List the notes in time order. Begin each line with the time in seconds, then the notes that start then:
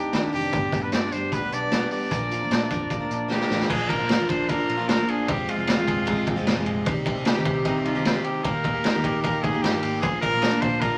Already playing: D2 G3 C4 D4 D#4 G4
0.12 D#3 C4 D4 G4, snare, closed hi-hat
0.32 F1 D#3 G3 C4 D4 G4, open hi-hat
0.52 G1 G2 D3 G3 B3 D4 G4, kick, closed hi-hat
0.72 G1 G3, kick, closed hi-hat
0.82 G3 B3 D4 G4 B4
0.92 G2 C4 D5, snare, closed hi-hat
1.04 D4
1.11 G1 G3 B3 D4 G4 C5, closed hi-hat
1.32 D2 B3 B4, kick, closed hi-hat
1.41 G3 B3 D4 G4
1.51 B1 D4 D5, closed hi-hat
1.71 G3 B3 D4 G4, snare, closed hi-hat
1.91 G3 B3 D4 G4 D5, open hi-hat
2.10 A#1 A#2 F3 A#3 D4 A#4, kick, closed hi-hat
2.31 F3, closed hi-hat
2.40 A#3 D4 A#4
2.50 A#2 D4, snare, closed hi-hat
2.70 F2 F3 A#3 D4 A#4, kick, closed hi-hat
2.90 D2 A#3, kick, closed hi-hat
2.99 A#3 D4 A#4
3.10 A#1 D4, closed hi-hat
3.28 F3 A#3 D4 G4 A#4, snare
3.40 snare
3.49 A1 F3 A#3 D4 A#4, snare
3.60 snare
3.69 A#1 F3 A#3 D4 F4 G#4, kick, crash
3.89 F3 A#4, kick, ride
3.98 A#1 A#3 D4 F4
4.09 A#3, snare, ride
4.19 A#2 F3 A#3 D4 F4
4.29 A#1 D4 C5, kick, ride
4.48 A#2 F3 A#3 D4 F4 A#4, kick, ride
4.68 A#1 A#3, ride
4.77 A#2 F3 A#3 D4 F4
4.89 F3 A#4, snare, ride
4.98 A#2 F3 A#3 D4 F4
5.08 D4 G#4, ride
5.26 F1 F3 G#3 C4 F4 G4, kick, ride
5.48 G#3 F4, ride
5.56 F1 F3 G#3 C4 F4
5.67 C4, snare, ride
5.76 F2 C3 F3 G#3 C4 F4
5.88 F1 G#4, kick, ride
6.05 F2 C3 F3 G#3 C4 F4, kick, ride
6.27 F1 C4, kick, ride
6.36 F2 C3 F3 G#3 C4 F4
6.47 A#1 G#3, snare, ride
6.55 F2 C3 F3 G#3 C4 F4
6.66 A#1 G#4, ride
6.85 C2 D#3 G3 C4 D#4 G4, kick, ride
7.06 C4, kick, ride
7.15 C2 C4 D#4 G4
7.25 D#4 G4, snare, ride
7.36 C3 D#3 C4 D#4 G4
7.45 C2 G4, kick, ride
7.65 C3 D#3 C4 D#4 G4, kick, ride
7.79 G4
7.85 C2 D#4 F4, ride
7.95 C3 D#3 C4 D#4 G4
8.05 C4, snare, ride
8.15 C3 D#3 C4 D#4 G4
8.24 G4, ride
8.44 D#2 D#3 A#3 D#4 G4 A#4, kick, ride
8.64 A#3, kick, ride
8.73 D#2 A#3 D#4 G4
8.84 D#4, snare, ride
8.94 D#3 A#3 D#4 G4
9.04 D#2 G4, kick, ride
9.23 D#3 A#3 D#4 G4 A#4, kick, ride
9.42 D#2 D#4 G#4, kick, ride
9.53 D#3 A#3 D#4 G4
9.62 G2 A#3 G4, snare, ride
9.72 D#3 A#3 D#4 G4
9.83 G#1 G4, open hi-hat, ride
10.01 A#1 F3 A#3 D4 G#4, kick, hi-hat pedal, ride
10.05 F4
10.21 A#3 A#4, kick, ride
10.31 A#1 A#3 D4 F4
10.42 D4, snare, ride
10.51 A#2 F3 A#3 D4 F4
10.61 A#1 F4 C5, kick, ride
10.80 A#2 F3 A#3 D4 F4 A#4, kick, ride